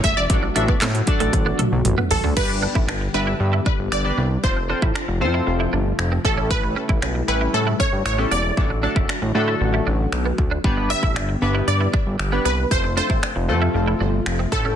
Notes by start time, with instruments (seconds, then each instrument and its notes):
Already playing: analog synth pad C#3 G3 A3 E4
0.04 analog synth bass F#1, synth arpeggio sound G3, clean electric guitar A3, synth pluck E5, kick, closed hi-hat
0.17 analog synth bass E1, synth arpeggio sound C#4, synth pluck D5
0.30 analog synth bass A1, analog synth pad D3 F#3 A3 F#4, synth arpeggio sound F#3, synth keys D4 F#4 A4 D5, kick, closed hi-hat
0.43 synth arpeggio sound A3, muted clean electric guitar stroke
0.56 analog synth bass A1, synth arpeggio sound F#3, synth keys D4 F#4 A4 E5, clean electric guitar D4, closed hi-hat
0.68 clean electric guitar B3, kick
0.82 analog synth bass A2, synth arpeggio sound F#3, clean electric guitar A3, snare, clap, closed hi-hat
0.94 synth arpeggio sound F#4, muted clean electric guitar stroke, closed hi-hat
1.07 synth arpeggio sound F#3, synth keys D4 F#4 A4 D5, kick, closed hi-hat
1.20 analog synth bass A1, clean electric guitar A3, synth arpeggio sound A3, closed hi-hat
1.33 analog synth bass A1, synth arpeggio sound F#3, muted clean electric guitar stroke, kick, closed hi-hat, high tom
1.46 clean electric guitar B3, synth arpeggio sound D4
1.59 analog synth bass B1, synth arpeggio sound F#3, clean electric guitar A3, closed hi-hat, mid tom
1.72 analog synth bass B1
1.85 analog synth bass A1, synth arpeggio sound F#3, closed hi-hat, mid tom
1.98 synth arpeggio sound A3, clean electric guitar B3, mid tom
2.11 analog synth bass A1, synth arpeggio sound F#3, synth pluck A4, muted clean electric guitar stroke, floor tom, open hi-hat
2.24 analog synth bass D2, clean electric guitar A3, synth arpeggio sound D4, floor tom
2.36 analog synth bass G1, analog synth pad D3 G3 B3 G4, synth keys D4 G4 B4 D5, synth pluck B4, kick, crash
2.50 muted clean electric guitar stroke
2.62 clean electric guitar D4
2.75 analog synth bass A1, clean electric guitar E4, kick
2.88 analog synth bass G1, clean electric guitar D4, finger snap
3.01 muted clean electric guitar stroke
3.14 analog synth bass G1, synth keys D4 G4 B4 E5, synth pluck B4
3.27 clean electric guitar E4
3.40 analog synth bass G2, muted clean electric guitar stroke
3.53 clean electric guitar E4
3.66 clean electric guitar D4, kick
3.79 analog synth bass G1
3.92 analog synth bass G1, synth pluck D5, finger snap, muted clean electric guitar stroke
4.05 clean electric guitar B3, synth keys D4 G4 B4 D5
4.18 analog synth bass C2, clean electric guitar B3
4.43 analog synth bass F1, analog synth pad C3 F3 A3 F4, synth keys C4 F4 A4 C5, synth pluck C5, kick
4.57 muted clean electric guitar stroke
4.69 synth keys C4 F4 A4 C5, clean electric guitar D4
4.82 analog synth bass A1, clean electric guitar E4, kick
4.95 clean electric guitar D4, finger snap
5.08 analog synth bass F1, muted clean electric guitar stroke
5.21 analog synth bass F2, synth keys C4 F4 A4 C5
5.34 clean electric guitar E4
5.47 analog synth bass F1, muted clean electric guitar stroke
5.60 clean electric guitar E4
5.73 analog synth bass G1, clean electric guitar D4
5.99 analog synth bass F1, finger snap
6.12 clean electric guitar C4
6.24 analog synth bass A1, analog synth pad C#3 G3 E4, synth keys C#4 E4 G4 A4, synth pluck A4, muted clean electric guitar stroke, kick
6.38 clean electric guitar C#4
6.51 synth pluck B4, kick
6.63 muted clean electric guitar stroke
6.76 clean electric guitar C#4
6.89 analog synth bass A1, clean electric guitar E4, kick
7.02 analog synth bass B1, clean electric guitar C#4, finger snap
7.15 muted clean electric guitar stroke
7.28 analog synth bass A1, synth keys C#4 E4 G4 B4, synth pluck B4
7.41 clean electric guitar E4
7.54 analog synth bass A2, synth pluck A4, muted clean electric guitar stroke
7.67 clean electric guitar E4
7.80 clean electric guitar C#4, synth pluck C#5, kick
7.93 analog synth bass G2
8.06 analog synth bass A1, synth pluck C#5, finger snap, muted clean electric guitar stroke
8.18 clean electric guitar B3, synth keys C#4 E4 G4 A4
8.31 analog synth bass E1, clean electric guitar B3, synth pluck D5
8.57 analog synth bass A1, analog synth pad D3 F#3 F#4, synth keys A3 D4 F#4 A4, kick
8.70 muted clean electric guitar stroke
8.83 synth keys A3 D4 F#4 A4, clean electric guitar D4
8.96 analog synth bass F#1, clean electric guitar E4, kick
9.09 clean electric guitar D4, finger snap
9.22 analog synth bass A1, muted clean electric guitar stroke
9.35 analog synth bass A2, synth keys A3 D4 F#4 A4
9.48 clean electric guitar E4
9.61 analog synth bass A1, muted clean electric guitar stroke
9.74 clean electric guitar E4
9.87 analog synth bass A1, clean electric guitar D4
10.12 analog synth bass B1, finger snap
10.26 clean electric guitar B3
10.38 analog synth bass D2, muted clean electric guitar stroke, kick
10.51 clean electric guitar D4
10.64 analog synth bass G1, analog synth pad G3 B3 G4, synth keys B3 D4 G4 B4, kick
10.77 muted clean electric guitar stroke
10.90 clean electric guitar D4, synth pluck E5
11.03 analog synth bass A1, clean electric guitar E4, kick
11.16 analog synth bass G1, clean electric guitar D4, finger snap
11.29 muted clean electric guitar stroke
11.42 analog synth bass G1, synth keys B3 D4 G4 B4
11.55 clean electric guitar E4
11.68 analog synth bass G2, synth pluck D5, muted clean electric guitar stroke
11.81 clean electric guitar E4
11.93 clean electric guitar D4, kick
12.06 analog synth bass G1
12.19 analog synth bass G1, finger snap, muted clean electric guitar stroke
12.32 synth keys B3 D4 G4 B4, clean electric guitar B3
12.45 analog synth bass C2, clean electric guitar B3, synth pluck B4
12.71 analog synth bass F1, analog synth pad C3 F3 A3 F4, synth keys A3 C4 F4 A4, synth pluck C5, kick
12.84 muted clean electric guitar stroke
12.97 synth keys A3 C4 F4 A4, clean electric guitar D4, synth pluck C5
13.10 analog synth bass A1, clean electric guitar E4, kick
13.23 clean electric guitar D4, finger snap
13.36 analog synth bass F1, muted clean electric guitar stroke
13.49 analog synth bass F2, synth keys A3 C4 F4 A4
13.62 clean electric guitar E4
13.75 analog synth bass F1, muted clean electric guitar stroke
13.88 clean electric guitar E4
14.00 analog synth bass G1, clean electric guitar D4
14.26 analog synth bass F1, finger snap
14.39 clean electric guitar C4
14.52 analog synth bass A1, analog synth pad C#3 G3 E4, synth keys A3 C#4 E4 G4, synth pluck A4, muted clean electric guitar stroke, kick
14.65 clean electric guitar C#4